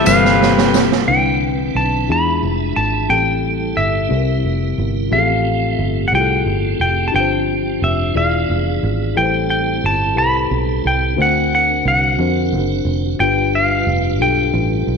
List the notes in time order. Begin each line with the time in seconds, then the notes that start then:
Already playing: C3 E3 G3 C4 E4 G4
0.06 G1 E3 G3 C4 G4 A4 B4 F5, snare, tambourine
0.25 snare
0.42 snare
0.58 snare
0.74 snare, tambourine
0.92 snare
1.08 C2 D3 E3 C4 D4 E4 B4 G5
1.75 B1 A5
2.07 E2 E3 G#3 D4 E4 F4 G#4 E5
2.12 B5
2.43 F1
2.76 G#1 A5
3.09 A1 A2 G3 C4 E4 G4 G#4 A4 G5
3.17 A4
3.77 G1 E5
4.09 C2 C3 C4 E4 G4 A4
4.13 G3 C4 E4 A#4
4.18 A#4
4.44 F1
4.78 G1
5.11 A1 A2 F3 A3 C4 F4 G4 G#4 F5
5.18 A4
5.73 E5
5.79 G1
6.08 F#5
6.12 C2 E4 F4 G4 G#4 G5
6.21 A4
6.46 G1
6.80 F1 G5
7.08 A5
7.12 G1 G2 F3 C4 D4 F4 G4 B4 G5
7.20 C5
7.82 F1 E5
8.14 E1 E3 B3 D4 E4 F4 G#4 D5 F5
8.50 F1
8.83 G#1
9.15 A1 A2 G3 C4 E4 G4 A4 B4 G5
9.23 C5
9.50 G5
9.84 G1 A5
10.15 C2 E4 G4 A4 B4 B5
10.51 B1
10.85 C2 G5
11.16 D2 D3 D4 F#4 A#4 C5
11.21 C4 D4 F#4 A#4 F#5
11.55 F#5
11.85 C2 F#5
12.18 F2 D4 F#4 A#4 C5
12.52 F#1
12.85 F1
13.20 G1 G2 G3 D4 F4 G4 A4 B4 G5
13.28 B4
13.55 F5
13.87 F1
14.20 B1 D4 F4 G4 A4 G5
14.54 A1
14.87 B1